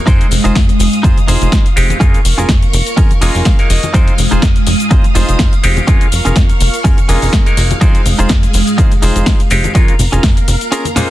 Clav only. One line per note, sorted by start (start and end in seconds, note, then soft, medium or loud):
0.07 1.74 C4 medium
0.07 1.74 D#4 medium
0.07 1.75 G5 medium
1.76 1.98 G#3 loud
1.76 1.98 C4 medium
1.76 1.98 D#4 medium
1.76 1.99 G4 loud
2.01 2.19 G#3 medium
2.01 2.19 A#3 medium
2.01 2.19 D#4 medium
2.01 2.19 F4 loud
3.21 3.56 G#3 medium
3.21 3.56 A#3 medium
3.21 3.56 D#4 medium
3.21 3.56 F4 medium
3.59 3.92 G#3 medium
3.59 3.92 A#3 medium
3.59 3.92 D#4 medium
3.59 3.92 A#4 medium
3.93 5.61 G#3 medium
3.93 5.61 C4 medium
3.93 5.61 D#4 medium
3.93 5.62 G5 medium
5.63 5.85 G#3 loud
5.63 5.85 C4 medium
5.63 5.86 D#4 medium
5.63 5.86 G4 loud
5.88 6.06 G#3 loud
5.88 6.06 A#3 medium
5.88 6.07 D#4 medium
5.88 6.07 F4 loud
7.09 7.43 G#3 medium
7.09 7.43 A#3 medium
7.09 7.43 D#4 medium
7.09 7.44 F4 medium
7.46 7.79 G#3 medium
7.46 7.79 A#3 medium
7.46 7.79 D#4 medium
7.46 7.79 A#4 medium
7.81 9.48 G#3 medium
7.81 9.48 C4 medium
7.81 9.48 D#4 medium
7.81 9.49 G5 medium
9.51 9.72 G#3 loud
9.51 9.73 C4 medium
9.51 9.73 D#4 medium
9.51 9.73 G4 loud
9.75 9.93 G#3 medium
9.75 9.94 A#3 medium
9.75 9.94 D#4 medium
9.75 9.94 F4 loud
10.96 11.10 G#3 medium
10.96 11.10 A#3 medium
10.96 11.10 D#4 medium
10.96 11.10 F4 loud